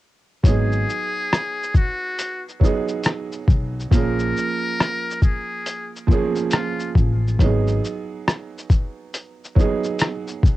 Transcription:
0.43 0.83 G#1 medium
0.43 1.73 F#3 medium
0.43 1.74 B3 medium
0.43 1.75 D#4 medium
0.43 1.78 G#4 loud
0.43 kick medium
0.43 closed hi-hat medium
0.43 shaker medium
0.48 1.76 G#4 medium
0.72 shaker soft
0.90 shaker soft
1.33 cross-stick loud
1.33 closed hi-hat medium
1.33 shaker medium
1.63 shaker medium
1.74 2.43 F#4 medium
1.74 kick medium
1.74 shaker medium
2.19 closed hi-hat medium
2.19 shaker medium
2.49 shaker soft
2.60 3.61 F#3 medium
2.60 3.62 B3 medium
2.60 3.63 D#4 medium
2.60 kick medium
2.64 3.63 G#4 medium
2.64 shaker soft
2.88 shaker soft
3.03 cross-stick loud
3.03 closed hi-hat medium
3.03 shaker medium
3.32 shaker soft
3.48 3.87 B1 medium
3.48 kick medium
3.48 shaker soft
3.80 shaker soft
3.91 4.31 A#1 medium
3.91 5.21 F3 medium
3.91 5.22 A#3 medium
3.91 5.23 C#4 medium
3.91 5.26 A#4 loud
3.91 kick loud
3.91 closed hi-hat medium
3.91 shaker medium
3.96 5.23 G#4 medium
4.19 shaker soft
4.37 shaker soft
4.80 cross-stick loud
4.80 closed hi-hat medium
4.80 shaker medium
5.11 shaker soft
5.22 5.91 G#4 medium
5.22 kick medium
5.22 shaker soft
5.66 closed hi-hat medium
5.66 shaker medium
5.96 shaker soft
6.07 7.09 F3 medium
6.07 7.09 A#3 medium
6.07 7.10 C#4 medium
6.07 kick medium
6.11 7.11 G#4 loud
6.11 shaker soft
6.36 shaker soft
6.51 6.93 F4 medium
6.51 cross-stick medium
6.51 closed hi-hat medium
6.51 shaker medium
6.80 shaker soft
6.95 7.35 A1 medium
6.95 kick medium
6.95 shaker soft
7.28 shaker soft
7.39 7.78 G#1 medium
7.39 8.69 F#3 medium
7.39 8.70 B3 medium
7.39 8.71 D#4 medium
7.39 kick medium
7.39 closed hi-hat medium
7.39 shaker medium
7.44 8.72 G#4 medium
7.67 shaker soft
7.85 shaker soft
8.28 cross-stick loud
8.28 closed hi-hat medium
8.28 shaker medium
8.58 shaker soft
8.70 kick medium
8.70 shaker soft
9.14 closed hi-hat medium
9.14 shaker medium
9.44 shaker soft
9.55 10.57 F#3 medium
9.55 10.57 B3 medium
9.55 10.57 D#4 medium
9.55 kick medium
9.59 10.57 G#4 medium
9.59 shaker soft
9.84 shaker soft
9.99 cross-stick loud
9.99 closed hi-hat medium
9.99 shaker medium
10.28 shaker soft
10.43 10.57 B1 medium
10.43 kick medium
10.43 shaker soft

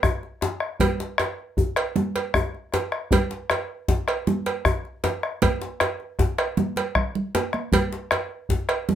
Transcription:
0.03 bombo rim medium
0.03 bombo low medium
0.03 high conga soft
0.03 djembe bass medium
0.23 djembe slap soft
0.41 bombo rim soft
0.41 djembe slap medium
0.41 djembe tone medium
0.60 bombo rim medium
0.80 bombo low medium
0.80 cowbell medium
0.80 high conga medium
0.80 low conga medium
0.80 djembe bass medium
1.00 djembe slap medium
1.18 bombo rim medium
1.18 cowbell soft
1.18 djembe slap soft
1.18 djembe tone medium
1.57 bombo low medium
1.57 djembe bass medium
1.76 bombo rim medium
1.76 cowbell soft
1.96 high conga medium
1.96 djembe tone medium
1.96 low conga medium
2.16 cowbell soft
2.16 djembe slap medium
2.34 bombo rim medium
2.34 bombo low medium
2.34 high conga soft
2.34 djembe bass medium
2.55 djembe slap soft
2.72 bombo rim soft
2.72 cowbell soft
2.72 djembe slap medium
2.72 djembe tone medium
2.92 bombo rim medium
3.11 bombo low loud
3.11 cowbell medium
3.11 high conga medium
3.11 djembe bass medium
3.11 low conga medium
3.31 djembe slap medium
3.50 bombo rim medium
3.50 cowbell soft
3.50 djembe slap soft
3.50 djembe tone medium
3.88 bombo low medium
3.88 djembe slap medium
3.88 djembe bass medium
4.08 bombo rim medium
4.08 cowbell soft
4.27 djembe tone medium
4.27 high conga medium
4.27 low conga medium
4.46 cowbell soft
4.46 djembe slap medium
4.65 bombo rim medium
4.65 bombo low medium
4.65 high conga soft
4.65 djembe bass medium
4.85 djembe slap soft
5.04 bombo rim soft
5.04 cowbell soft
5.04 djembe slap medium
5.04 djembe tone medium
5.23 bombo rim medium
5.42 bombo rim soft
5.42 bombo low medium
5.42 cowbell medium
5.42 djembe slap soft
5.42 high conga medium
5.42 low conga medium
5.42 djembe bass medium
5.62 djembe slap medium
5.80 bombo rim medium
5.80 cowbell soft
5.80 djembe slap soft
5.80 djembe tone medium
5.80 high conga soft
6.00 djembe slap soft
6.19 bombo rim soft
6.19 bombo low medium
6.19 djembe slap medium
6.19 high conga soft
6.19 djembe bass medium
6.38 bombo rim medium
6.38 cowbell soft
6.57 bombo rim soft
6.57 djembe slap soft
6.57 high conga medium
6.57 djembe tone medium
6.57 low conga medium
6.76 cowbell soft
6.76 djembe slap medium
6.76 low conga soft
6.95 bombo rim medium
6.95 bombo low medium
6.95 djembe slap soft
6.95 low conga soft
7.15 djembe slap soft
7.15 low conga soft
7.35 cowbell soft
7.35 djembe slap medium
7.35 djembe tone medium
7.35 high conga medium
7.53 bombo rim medium
7.53 high conga medium
7.72 bombo low medium
7.72 cowbell medium
7.72 high conga medium
7.72 low conga medium
7.72 djembe bass medium
7.92 djembe slap medium
8.11 bombo rim medium
8.11 cowbell soft
8.11 djembe slap soft
8.11 djembe tone medium
8.49 bombo low medium
8.49 djembe slap medium
8.49 djembe bass medium
8.69 bombo rim medium
8.69 cowbell soft
8.89 djembe tone medium
8.89 high conga medium
8.89 low conga medium

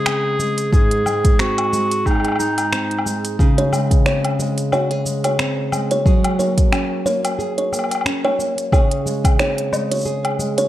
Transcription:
0.00 0.72 C#3 medium
0.00 0.39 G#3 medium
0.00 0.72 G#4 loud
0.00 0.72 G#4 medium
0.06 1.39 C4 medium
0.06 finger snap loud
0.06 cabasa soft
0.06 low woodblock medium
0.39 1.06 G#3 medium
0.39 cabasa medium
0.58 closed hi-hat medium
0.58 cabasa soft
0.73 3.39 G#2 medium
0.73 1.41 G#4 loud
0.73 2.06 G#4 medium
0.73 kick loud
0.73 cabasa soft
0.91 closed hi-hat soft
1.06 1.73 G#3 medium
1.06 cabasa medium
1.06 low woodblock medium
1.25 kick loud
1.25 closed hi-hat medium
1.25 cabasa soft
1.39 2.72 C4 medium
1.39 2.08 F#4 medium
1.39 finger snap medium
1.39 cabasa soft
1.58 closed hi-hat soft
1.58 low woodblock medium
1.73 2.39 G#3 medium
1.73 cabasa medium
1.91 closed hi-hat medium
1.91 cabasa soft
2.06 2.38 D#4 medium
2.06 3.39 G#4 medium
2.06 kick medium
2.06 cabasa soft
2.06 low woodblock soft
2.11 low woodblock soft
2.15 low woodblock soft
2.20 low woodblock soft
2.25 closed hi-hat soft
2.25 low woodblock soft
2.28 low woodblock medium
2.32 low woodblock medium
2.36 3.02 D#4 medium
2.36 low woodblock medium
2.40 3.06 G#3 medium
2.40 cabasa medium
2.58 closed hi-hat soft
2.58 cabasa soft
2.58 low woodblock medium
2.73 4.05 C4 medium
2.73 finger snap medium
2.73 cabasa soft
2.91 closed hi-hat soft
2.99 low woodblock medium
3.06 3.72 G#3 medium
3.06 cabasa medium
3.25 closed hi-hat medium
3.25 cabasa soft
3.39 6.06 C#3 medium
3.39 4.72 G#4 medium
3.39 kick loud
3.39 cabasa soft
3.58 3.72 C#5 medium
3.58 closed hi-hat soft
3.72 4.39 G#3 medium
3.72 cabasa medium
3.72 low woodblock medium
3.91 kick loud
3.91 closed hi-hat soft
3.91 cabasa soft
4.06 5.38 C4 medium
4.06 4.24 C#5 medium
4.06 finger snap medium
4.06 cabasa soft
4.25 closed hi-hat soft
4.25 low woodblock medium
4.39 5.05 G#3 medium
4.39 cabasa medium
4.58 closed hi-hat soft
4.58 cabasa soft
4.72 4.91 F#4 medium
4.72 4.90 C#5 loud
4.72 cabasa soft
4.72 low woodblock medium
4.91 6.05 G#4 medium
4.91 closed hi-hat soft
5.06 5.72 G#3 medium
5.06 cabasa medium
5.24 5.39 C#5 medium
5.24 closed hi-hat soft
5.24 cabasa soft
5.24 low woodblock medium
5.39 6.13 C4 medium
5.39 finger snap loud
5.39 cabasa soft
5.72 6.39 G#3 medium
5.72 cabasa medium
5.72 low woodblock medium
5.91 6.05 C#5 loud
5.91 closed hi-hat soft
5.91 cabasa soft
6.06 8.72 F#3 medium
6.06 7.38 G#4 medium
6.06 kick loud
6.06 cabasa soft
6.24 closed hi-hat soft
6.24 low woodblock medium
6.39 7.04 A#3 medium
6.39 6.57 C#5 medium
6.39 cabasa medium
6.58 kick medium
6.58 closed hi-hat medium
6.58 cabasa soft
6.72 8.05 C#4 medium
6.72 finger snap loud
6.72 cabasa soft
6.72 low woodblock medium
7.06 7.71 A#3 medium
7.06 7.24 C#5 medium
7.06 cabasa medium
7.25 closed hi-hat medium
7.25 cabasa soft
7.25 low woodblock medium
7.39 8.73 G#4 medium
7.39 cabasa soft
7.58 7.72 C#5 medium
7.58 closed hi-hat soft
7.72 8.38 A#3 medium
7.72 cabasa medium
7.72 low woodblock soft
7.79 low woodblock soft
7.84 low woodblock soft
7.91 closed hi-hat soft
7.91 cabasa soft
7.91 low woodblock medium
7.95 low woodblock medium
8.01 low woodblock medium
8.06 9.39 C#4 medium
8.06 finger snap medium
8.06 cabasa soft
8.25 8.39 C#5 loud
8.25 low woodblock medium
8.39 8.80 A#3 medium
8.39 cabasa medium
8.58 closed hi-hat medium
8.58 cabasa soft
8.72 10.68 C#3 medium
8.72 10.05 G#4 medium
8.72 8.91 C#5 medium
8.72 kick loud
8.72 cabasa soft
8.72 low woodblock medium
8.91 closed hi-hat soft
9.06 9.72 G#3 medium
9.06 cabasa medium
9.24 kick loud
9.24 closed hi-hat medium
9.24 cabasa soft
9.24 low woodblock medium
9.39 10.68 C4 medium
9.39 9.57 C#5 medium
9.39 finger snap loud
9.39 cabasa soft
9.58 closed hi-hat soft
9.72 10.39 G#3 medium
9.72 cabasa medium
9.72 low woodblock medium
9.91 10.05 C#5 medium
9.91 closed hi-hat medium
9.91 cabasa soft
9.94 cabasa soft
9.97 cabasa soft
9.98 cabasa soft
10.01 cabasa soft
10.03 cabasa soft
10.05 10.68 G#4 medium
10.05 cabasa soft
10.07 cabasa soft
10.25 closed hi-hat soft
10.25 low woodblock medium
10.39 10.68 G#3 medium
10.39 cabasa medium
10.58 10.68 C#5 loud
10.58 closed hi-hat medium
10.58 cabasa soft

